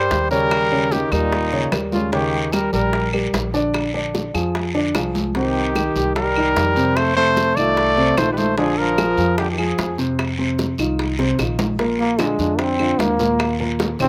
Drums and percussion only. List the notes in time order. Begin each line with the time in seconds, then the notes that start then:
0.11 high bongo, low bongo, high conga, short guiro
0.31 high conga, short guiro
0.51 high bongo, high conga, long guiro, claves
0.72 high conga
0.91 high bongo, high conga, short guiro
1.12 high bongo, high conga, short guiro, claves
1.32 high bongo, high conga, long guiro
1.52 high bongo, high conga
1.72 high bongo, low bongo, high conga, short guiro, claves
1.92 high bongo, high conga, short guiro
2.12 high bongo, high conga, long guiro
2.33 high conga
2.52 high bongo, high conga, short guiro, claves
2.73 high conga, short guiro
2.93 high bongo, high conga, long guiro
3.13 high conga, claves
3.34 high bongo, low bongo, high conga, short guiro
3.54 high conga, short guiro
3.74 high bongo, high conga, long guiro, claves
3.95 high conga
4.15 high bongo, high conga, short guiro
4.35 high bongo, high conga, short guiro, claves
4.55 high bongo, high conga, long guiro
4.75 high bongo, high conga
4.95 high bongo, low bongo, high conga, short guiro, claves
5.15 high bongo, high conga, short guiro
5.35 high bongo, long guiro
5.55 high conga
5.75 high bongo, high conga, short guiro, claves
5.96 high conga, short guiro
6.16 high bongo, high conga, long guiro
6.36 high conga, claves
6.56 high bongo, low bongo, high conga, short guiro
6.76 high conga, short guiro
6.96 high bongo, high conga, long guiro, claves
7.16 high conga
7.36 high bongo, high conga, short guiro
7.57 high bongo, high conga, short guiro, claves
7.77 high bongo, high conga, long guiro
7.97 high bongo, high conga
8.17 high bongo, low bongo, high conga, short guiro, claves
8.37 high bongo, high conga, short guiro
8.58 high bongo, long guiro
8.78 high conga
8.98 high bongo, high conga, short guiro, claves
9.17 high conga, short guiro
9.38 high bongo, high conga, long guiro
9.58 high conga, claves
9.78 high bongo, low bongo, high conga, short guiro
9.98 high conga, short guiro
10.19 high bongo, high conga, long guiro, claves
10.39 high conga
10.58 high bongo, high conga, short guiro
10.78 high bongo, high conga, short guiro, claves
10.99 high bongo, high conga, long guiro
11.19 high bongo, high conga
11.39 high bongo, high conga, short guiro, claves
11.59 low bongo, high conga, short guiro
11.79 high bongo, long guiro
11.99 high bongo, high conga
12.19 high bongo, high conga, short guiro, claves
12.39 high bongo, high conga, short guiro
12.59 high bongo, high conga, long guiro
12.79 high bongo, high conga, claves
12.99 high bongo, low bongo, high conga, short guiro
13.19 high conga, short guiro
13.39 high bongo, long guiro, claves
13.60 high bongo, high conga
13.79 high bongo, high conga, short guiro
13.99 high bongo, high conga, low conga, short guiro, claves